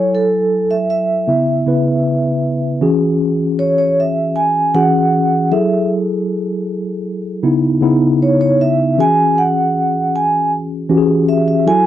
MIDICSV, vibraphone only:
0, 0, Header, 1, 2, 480
1, 0, Start_track
1, 0, Key_signature, 4, "major"
1, 0, Tempo, 769428
1, 1758, Time_signature, 4, 2, 24, 8
1, 7402, End_track
2, 0, Start_track
2, 0, Title_t, "Vibraphone"
2, 0, Program_c, 0, 11
2, 0, Note_on_c, 0, 73, 105
2, 92, Note_on_c, 0, 69, 90
2, 96, Note_off_c, 0, 73, 0
2, 441, Note_on_c, 0, 76, 93
2, 455, Note_off_c, 0, 69, 0
2, 494, Note_off_c, 0, 76, 0
2, 563, Note_on_c, 0, 76, 94
2, 1736, Note_off_c, 0, 76, 0
2, 2240, Note_on_c, 0, 73, 85
2, 2352, Note_off_c, 0, 73, 0
2, 2360, Note_on_c, 0, 73, 84
2, 2483, Note_off_c, 0, 73, 0
2, 2495, Note_on_c, 0, 76, 93
2, 2710, Note_off_c, 0, 76, 0
2, 2718, Note_on_c, 0, 80, 96
2, 2960, Note_on_c, 0, 78, 95
2, 2965, Note_off_c, 0, 80, 0
2, 3414, Note_off_c, 0, 78, 0
2, 3442, Note_on_c, 0, 76, 83
2, 3663, Note_off_c, 0, 76, 0
2, 5131, Note_on_c, 0, 73, 82
2, 5239, Note_off_c, 0, 73, 0
2, 5247, Note_on_c, 0, 73, 85
2, 5366, Note_off_c, 0, 73, 0
2, 5373, Note_on_c, 0, 76, 96
2, 5613, Note_off_c, 0, 76, 0
2, 5617, Note_on_c, 0, 80, 120
2, 5853, Note_on_c, 0, 78, 110
2, 5855, Note_off_c, 0, 80, 0
2, 6336, Note_on_c, 0, 80, 91
2, 6340, Note_off_c, 0, 78, 0
2, 6551, Note_off_c, 0, 80, 0
2, 7040, Note_on_c, 0, 76, 77
2, 7153, Note_off_c, 0, 76, 0
2, 7161, Note_on_c, 0, 76, 74
2, 7283, Note_off_c, 0, 76, 0
2, 7284, Note_on_c, 0, 80, 104
2, 7402, Note_off_c, 0, 80, 0
2, 7402, End_track
0, 0, End_of_file